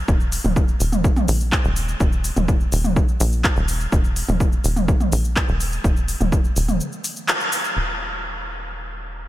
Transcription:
0.08 0.39 D#1 loud
0.08 kick loud
0.08 shaker soft
0.20 shaker soft
0.32 open hi-hat loud
0.32 shaker medium
0.44 0.75 D#1 medium
0.44 mid tom medium
0.44 shaker soft
0.56 kick loud
0.56 shaker soft
0.68 shaker soft
0.80 1.11 D#1 medium
0.80 open hi-hat medium
0.80 shaker medium
0.92 mid tom medium
0.92 shaker soft
1.04 kick loud
1.04 shaker soft
1.16 mid tom medium
1.16 shaker soft
1.28 1.59 A#1 loud
1.28 open hi-hat loud
1.28 shaker medium
1.40 shaker soft
1.52 kick loud
1.52 clap loud
1.52 shaker soft
1.64 1.95 D#1 loud
1.64 shaker soft
1.76 open hi-hat medium
1.76 shaker medium
1.88 shaker soft
2.00 2.31 D#1 loud
2.00 kick loud
2.00 shaker soft
2.12 shaker soft
2.24 open hi-hat loud
2.24 shaker medium
2.36 2.67 D#1 medium
2.36 mid tom medium
2.36 shaker soft
2.48 kick loud
2.48 shaker soft
2.60 shaker soft
2.72 3.03 D#1 medium
2.72 open hi-hat medium
2.72 shaker medium
2.84 mid tom medium
2.84 shaker soft
2.96 kick loud
2.96 shaker soft
3.08 shaker soft
3.20 3.51 A#1 loud
3.20 open hi-hat loud
3.20 shaker medium
3.32 shaker soft
3.44 kick loud
3.44 clap loud
3.44 shaker soft
3.56 3.87 D#1 loud
3.56 shaker soft
3.68 open hi-hat medium
3.68 shaker medium
3.80 shaker soft
3.92 4.23 D#1 loud
3.92 kick loud
3.92 shaker soft
4.04 shaker soft
4.16 open hi-hat loud
4.16 shaker medium
4.28 4.59 D#1 medium
4.28 mid tom medium
4.28 shaker soft
4.40 kick loud
4.40 shaker soft
4.52 shaker soft
4.64 4.95 D#1 medium
4.64 open hi-hat medium
4.64 shaker medium
4.76 mid tom medium
4.76 shaker soft
4.88 kick loud
4.88 shaker soft
5.00 mid tom medium
5.00 shaker soft
5.12 5.43 A#1 loud
5.12 open hi-hat loud
5.12 shaker medium
5.24 shaker soft
5.36 kick loud
5.36 clap loud
5.36 shaker soft
5.48 5.79 D#1 loud
5.48 shaker soft
5.60 open hi-hat medium
5.60 shaker medium
5.72 shaker soft
5.84 6.15 D#1 loud
5.84 kick loud
5.84 shaker soft
5.97 shaker soft
6.08 open hi-hat loud
6.08 shaker medium
6.20 6.51 D#1 medium
6.20 mid tom medium
6.20 shaker soft
6.32 kick loud
6.32 shaker soft
6.44 shaker soft
6.56 6.80 D#1 medium
6.56 open hi-hat medium
6.56 shaker medium
6.68 mid tom medium
6.68 shaker soft
6.80 shaker soft
6.92 shaker soft
7.04 open hi-hat loud
7.04 shaker medium
7.16 shaker soft
7.28 clap loud
7.28 shaker soft
7.40 shaker soft
7.52 open hi-hat medium
7.52 shaker medium
7.64 shaker soft
7.76 9.28 D#1 medium

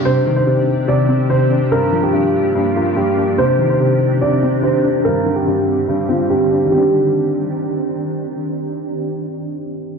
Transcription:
0.00 3.34 D4 medium
0.05 0.45 C3 medium
0.05 1.70 D#3 medium
0.05 1.70 C4 medium
0.05 5.01 G4 medium
0.05 0.34 C5 loud
0.26 1.30 D#3 medium
0.36 0.85 C5 medium
0.47 0.86 C3 medium
0.88 1.29 C3 medium
0.88 1.27 D5 medium
1.09 1.71 C4 medium
1.30 1.72 C3 medium
1.30 1.69 C5 medium
1.51 1.72 D4 medium
1.72 2.12 G2 medium
1.72 3.37 F3 medium
1.72 3.37 A#3 medium
1.72 2.01 A#4 loud
1.92 2.97 F3 medium
2.03 2.72 G4 medium
2.13 2.54 G2 medium
2.55 2.94 G2 medium
2.76 3.38 A#3 medium
2.76 2.93 F4 medium
2.96 3.38 G2 medium
2.96 3.36 G4 medium
3.18 3.38 D4 medium
3.38 3.79 C3 medium
3.38 5.03 D#3 medium
3.38 5.03 C4 medium
3.38 5.03 D4 medium
3.38 3.68 C5 loud
3.59 4.63 D#3 medium
3.70 4.19 C5 medium
3.80 4.21 C3 medium
4.21 4.62 C3 medium
4.21 4.61 D5 medium
4.43 5.05 C4 medium
4.63 5.05 C3 medium
4.63 5.02 C5 medium
4.84 5.05 D4 medium
5.05 5.45 G2 medium
5.05 6.70 D3 medium
5.05 6.70 G3 medium
5.05 6.70 C4 medium
5.05 6.70 G4 medium
5.05 5.34 A#4 loud
5.26 6.30 D3 medium
5.36 6.05 G4 medium
5.47 5.87 G2 medium
5.88 6.28 G2 medium
6.09 6.71 C4 medium
6.09 6.26 F4 medium
6.30 6.71 G2 medium
6.30 6.69 G4 medium
6.51 6.72 D4 medium
6.66 9.97 D#3 medium
6.66 9.99 G3 medium
6.72 9.99 D#3 medium
6.72 9.99 C4 medium
6.72 9.99 D4 medium
6.72 9.99 G4 medium
6.72 7.93 G4 medium
6.78 9.99 D4 medium

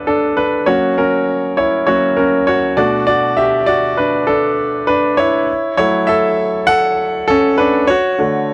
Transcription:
0.00 0.69 G2 soft
0.00 0.68 D3 soft
0.00 0.69 B3 soft
0.00 0.08 D4 medium
0.00 0.07 A4 medium
0.00 0.37 B4 medium
0.07 0.35 D4 medium
0.07 0.38 A4 medium
0.37 0.65 D4 medium
0.37 0.68 B4 medium
0.66 1.85 F#3 soft
0.66 1.86 A#3 soft
0.66 0.97 C#4 medium
0.66 0.95 F#4 medium
0.66 0.95 C#5 medium
0.98 1.54 C#4 medium
0.98 1.59 A#4 medium
1.57 1.86 E4 medium
1.57 1.85 C#5 medium
1.87 2.14 F#3 soft
1.87 2.14 A#3 soft
1.87 2.14 C#4 soft
1.87 2.16 F#4 medium
1.87 2.18 C#5 medium
2.17 2.46 C#4 medium
2.17 2.48 A#4 medium
2.47 2.76 F#4 medium
2.47 2.78 C#5 medium
2.77 5.14 B2 medium
2.77 5.14 A3 soft
2.77 3.98 D4 medium
2.77 3.06 F#4 medium
2.77 3.05 D5 medium
3.07 3.36 F#4 medium
3.07 3.35 D5 medium
3.37 3.66 G4 medium
3.37 3.68 E5 medium
3.66 3.96 F#4 medium
3.66 3.95 D5 medium
3.97 4.26 D4 medium
3.97 4.28 B4 medium
4.27 4.84 D4 medium
4.27 4.89 A4 medium
4.87 5.16 D4 medium
4.87 5.15 B4 medium
5.17 5.75 E4 medium
5.17 5.76 C#5 medium
5.77 7.84 F#3 soft
5.77 7.85 A3 soft
5.77 6.07 E4 medium
5.77 6.09 C#5 medium
6.07 6.64 A4 medium
6.07 6.69 E5 loud
6.67 7.24 A4 medium
6.67 7.29 F#5 loud
7.28 7.57 C#4 medium
7.28 7.59 A4 medium
7.58 7.87 D4 medium
7.58 7.89 B4 medium
7.87 8.18 F#4 medium
7.87 8.54 C#5 loud
8.18 8.54 D3 medium
8.18 8.54 A3 medium
8.18 8.54 F#4 medium

